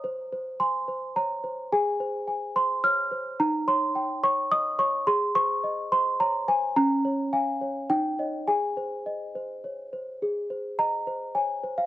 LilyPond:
\new Staff \with { instrumentName = "Celesta" } { \time 3/4 \key aes \major \tempo 4 = 107 << { r4 c'''4 bes''4 | aes''4. c'''8 f'''4 | bes''8 c'''4 des'''8 ees'''8 des'''8 | c'''8 des'''4 c'''8 bes''8 aes''8 |
bes''4 aes''4 g''4 | aes''2~ aes''8 r8 | r4 bes''4 aes''8. f''16 | } \\ { c''8 c''8 aes''8 c''8 des''8 c''8 | aes'8 c''8 aes''8 c''8 des''8 c''8 | ees'8 des''8 g''8 des''8 ees''8 des''8 | aes'8 c''8 ees''8 c''8 des''8 c''8 |
des'8 des''8 f''8 des''8 ees'8 <des'' ees''>8 | aes'8 c''8 ees''8 c''8 des''8 c''8 | aes'8 c''8 ees''8 c''8 des''8 c''8 | } >> }